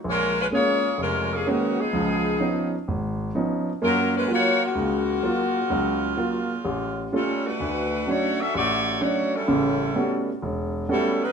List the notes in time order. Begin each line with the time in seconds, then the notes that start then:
0.04 A#1 C#4
0.09 G#3 F4 A#4
0.40 G#3 C#4 F4 B4
0.51 G#3 A#3 C#4 F4 G#4 C#5
0.98 F1 G#3 C#4 A#4
1.02 F4
1.33 F3 A#3 C#4 G#4
1.47 D#3 G#3 A#3 B3 C#4 F#4
1.80 F3 B3 D#4 G#4
1.93 C#2 F3
2.39 F3 B3 C#4 D#4
2.88 G#1
3.35 F3 B3 C#4 D#4
3.82 F#2 F#3 A#3 C#4 F4 A#4
4.17 G#3 C#4 F4 B4
4.27 F#3 A#3 F4
4.33 A#3 F4 F#4 C#5
4.64 C#3 A#3 F4 F#4
4.75 C#2
5.23 F#3 A#3 F4
5.70 C#2 F#3
6.17 F#3 A#3 F4
6.65 A1
7.12 G3 A3 C#4 F4 A4
7.46 A3 D4 F#4 B4
7.60 D2
8.07 F#3 A3 C#4 D4 F#4 C#5
8.40 C#4 F#4 A4 E5
8.55 A1 A3 F#4 C#5 D5
9.01 F#3 A3 C#4 D4 F#4 C#5
9.35 G3 C#4 E4 A4
9.48 A1 C#3
9.95 G3 A3 B3 C#4 F#4
10.42 E1
10.89 G3 A3 B3 C#4 E4 F#4 A4
11.22 F#3 D#4 A#4 B4